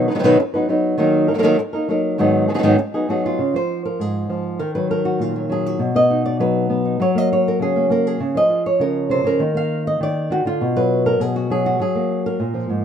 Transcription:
0.08 nylon-string guitar D#3 F#3 B3 D#4 B4
0.15 nylon-string guitar D#3 F#3 B3 D#4 B4
0.19 nylon-string guitar D#3 F#3 B3 D#4 B4
0.23 nylon-string guitar B2 D#3 F#3 B3 D#4 B4
0.39 muted nylon-string guitar stroke
0.54 nylon-string guitar F#3 B3 D#4 B4
0.69 nylon-string guitar F#3 B3 D#4 B4
0.98 nylon-string guitar D#3 F#3 A#3 D#4 A#4
1.28 nylon-string guitar A#3 D#4 A#4
1.34 nylon-string guitar F#3 A#3 D#4 A#4
1.38 nylon-string guitar F#3 A#3 D#4 A#4
1.43 nylon-string guitar D#3 F#3 A#3 D#4 A#4
1.59 muted nylon-string guitar stroke
1.73 nylon-string guitar A#3 D#4 A#4
1.88 nylon-string guitar F#3 A#3 D#4 A#4
2.18 nylon-string guitar G#2 D#3 F#3 B3 D#4 G#4
2.48 nylon-string guitar D#3 F#3 B3 D#4 G#4
2.54 nylon-string guitar D#3 F#3 B3 D#4 G#4
2.59 nylon-string guitar D#3 F#3 B3 D#4 G#4
2.63 nylon-string guitar G#2 D#3 F#3 B3 D#4 G#4
2.78 muted nylon-string guitar stroke
2.94 nylon-string guitar F#3 B3 D#4 G#4
3.09 nylon-string guitar F#3 B3 D#4 F#4 G#4
3.26 nylon-string guitar F4
3.39 nylon-string guitar C#3
3.54 nylon-string guitar F3 C5
3.85 nylon-string guitar A#4
4.00 nylon-string guitar G#2 G#4
4.29 nylon-string guitar F3
4.59 nylon-string guitar D#3 A#4
4.75 nylon-string guitar F#3 B4
4.91 nylon-string guitar A#4
5.05 nylon-string guitar F#4
5.19 nylon-string guitar A#2 F4
5.36 nylon-string guitar F#3
5.49 nylon-string guitar F#3 G#4
5.66 nylon-string guitar F#4
5.79 nylon-string guitar B2
5.95 nylon-string guitar B3 D#5
6.10 nylon-string guitar D#4
6.26 nylon-string guitar D5
6.40 nylon-string guitar F#3 B4
6.69 nylon-string guitar B3
6.85 nylon-string guitar D#4
7.00 nylon-string guitar F#3 C#5
7.15 nylon-string guitar A#3 D#5
7.33 nylon-string guitar C#5
7.48 nylon-string guitar A#4
7.59 nylon-string guitar C#3 G#4
7.76 nylon-string guitar A#3
7.90 nylon-string guitar A#3 A#4
8.07 nylon-string guitar G#4
8.20 nylon-string guitar C#3
8.35 nylon-string guitar F3 D#5
8.50 nylon-string guitar F4
8.66 nylon-string guitar C#5
8.80 nylon-string guitar C#3 A#4
9.10 nylon-string guitar C3 C5
9.24 nylon-string guitar C#3 A#4
9.39 nylon-string guitar D#3 A#3
9.54 nylon-string guitar A#3 F5
9.87 nylon-string guitar D#5
10.00 nylon-string guitar D#3 D5
10.30 nylon-string guitar D#3 F#4
10.45 nylon-string guitar D3 F4
10.61 nylon-string guitar B2
10.76 nylon-string guitar F#3 B4
11.06 nylon-string guitar A#4
11.20 nylon-string guitar B2 G#4
11.36 nylon-string guitar F#4
11.50 nylon-string guitar F#3 G#4
11.66 nylon-string guitar F#4
11.79 nylon-string guitar F#3 G#4
11.95 nylon-string guitar A#3
12.26 nylon-string guitar A#4
12.40 nylon-string guitar A#2
12.54 nylon-string guitar F3
12.69 nylon-string guitar G#2

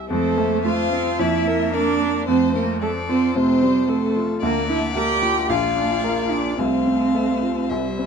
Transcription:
Already playing: grand piano C2 G3 C4 E4
0.09 grand piano F2, cello A3, viola C4, violin A4 C5
0.38 grand piano A3, viola A#3
0.65 viola A3, grand piano F4, cello F4, violin C5 F5
0.92 viola C4, grand piano C4
1.19 grand piano F2, viola A#3, cello E4, violin D5 E5
1.47 grand piano A#3, violin A#4
1.74 cello D4, grand piano A#4, violin D5
2.01 grand piano D4
2.27 grand piano F2, viola A3, cello C4, violin C5
2.54 cello A#3, grand piano C4, violin A#4
2.81 cello A3, viola C4, violin A4 D5, grand piano A4
3.08 cello C4, grand piano F4, violin C5
3.35 grand piano C3, viola A3, cello C4, violin C5
3.62 viola G3, grand piano C4
3.88 viola A3, violin A4, grand piano A4
4.16 grand piano F4
4.42 grand piano D2, cello A#3, viola A#3, violin A#4 D5
4.69 grand piano D4, cello E4, violin E5
4.95 cello G4, grand piano A#4, violin G5
5.23 grand piano F4
5.49 grand piano A#1, viola A#3, cello F4, violin D5 F5
5.77 grand piano D4
6.04 grand piano A#4
6.31 cello D4, grand piano F4, violin D5
6.59 grand piano C2, viola A3, cello C4, violin C5 F5
6.87 grand piano C4
7.15 grand piano A4
7.43 grand piano F4
7.69 grand piano C2, viola G3, violin E5
7.99 grand piano C4

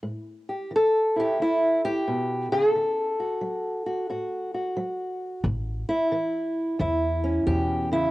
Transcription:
0.03 steel-string acoustic guitar A2
0.49 steel-string acoustic guitar G4
0.71 steel-string acoustic guitar E3
0.76 steel-string acoustic guitar A4
1.16 steel-string acoustic guitar E4 G4
1.40 steel-string acoustic guitar E2 E4
1.85 steel-string acoustic guitar G4
2.07 steel-string acoustic guitar B2
2.52 steel-string acoustic guitar C#3 G#4
2.69 steel-string acoustic guitar A4
2.76 steel-string acoustic guitar D3
3.20 steel-string acoustic guitar F#4
3.41 steel-string acoustic guitar F#3
3.86 steel-string acoustic guitar F#4
4.10 steel-string acoustic guitar A2 F#4
4.54 steel-string acoustic guitar F#4
4.77 steel-string acoustic guitar F#3
5.44 upright bass A1, steel-string acoustic guitar A2
5.89 steel-string acoustic guitar E4
6.12 steel-string acoustic guitar E3
6.79 steel-string acoustic guitar E2 E4, upright bass E2
7.24 steel-string acoustic guitar C#4
7.47 upright bass E2, steel-string acoustic guitar B2 G4
7.91 steel-string acoustic guitar C#3 E4

